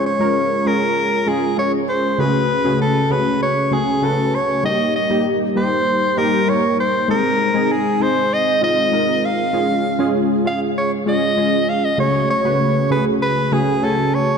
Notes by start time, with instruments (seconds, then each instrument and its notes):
Already playing: synth keys G#3 C#4 F4 G#4
0.06 soprano saxophone C#5
0.19 synth keys G#3 C#4 F4 A#4
0.65 synth keys G#3 C#4 F4 G#4, soprano saxophone A#4
1.27 synth keys G#3 C#4 F4 G#4, soprano saxophone G#4
1.57 synth keys G#3 C#4 F4 G#4, soprano saxophone C#5
1.89 soprano saxophone C5
2.18 synth keys C#3 A3 C#4 F#4 G#4, soprano saxophone B4
2.64 synth keys C#3 A3 C#4 F#4 G#4
2.81 soprano saxophone A4
3.10 synth keys C#3 A3 C#4 F#4 G#4, soprano saxophone B4
3.42 soprano saxophone C#5
3.71 synth keys C#3 A3 C#4 F#4 G#4, soprano saxophone G#4
4.02 synth keys C#3 A3 C#4 F#4 B4, soprano saxophone A4
4.35 soprano saxophone C#5
4.64 synth keys G3 A#3 D#4 G4, soprano saxophone D#5
4.96 soprano saxophone D#5
5.10 synth keys G3 A#3 D#4 G4
5.55 synth keys G3 A#3 D#4 G4, soprano saxophone C5
6.17 synth keys G3 A#3 D#4 G4, soprano saxophone A#4
6.47 synth keys G3 A#3 D#4 A#4, soprano saxophone C#5
6.80 soprano saxophone C5
7.08 synth keys G#3 C4 D#4 G#4, soprano saxophone A#4
7.54 synth keys G#3 C4 D#4 G#4
7.72 soprano saxophone G#4
8.00 synth keys G#3 C4 D#4 G#4, soprano saxophone C5
8.33 soprano saxophone D#5
8.61 synth keys G#3 C4 D#4 F4, soprano saxophone D#5
8.92 synth keys G#3 C4 D#4 A#4
9.25 soprano saxophone F5
9.53 synth keys G#3 C#4 F4 G#4
9.99 synth keys G#3 C#4 F4 G#4
10.45 synth keys G#3 C#4 F4 G#4, soprano saxophone F5
10.78 soprano saxophone C#5
11.06 synth keys G#3 C#4 F4 G#4, soprano saxophone D#5
11.37 synth keys G#3 C#4 F4 G#4
11.69 soprano saxophone F5
11.85 soprano saxophone D#5
11.98 synth keys C#3 A3 C#4 F#4 G#4, soprano saxophone C#5
12.30 soprano saxophone C#5
12.44 synth keys C#3 A3 C#4 F#4 B4
12.90 synth keys C#3 A3 C#4 F#4 G#4, soprano saxophone B4
13.22 soprano saxophone B4
13.52 synth keys C#3 A3 C#4 F#4 G#4, soprano saxophone G#4
13.82 synth keys C#3 A3 C#4 F#4 G#5, soprano saxophone A4
14.14 soprano saxophone C#5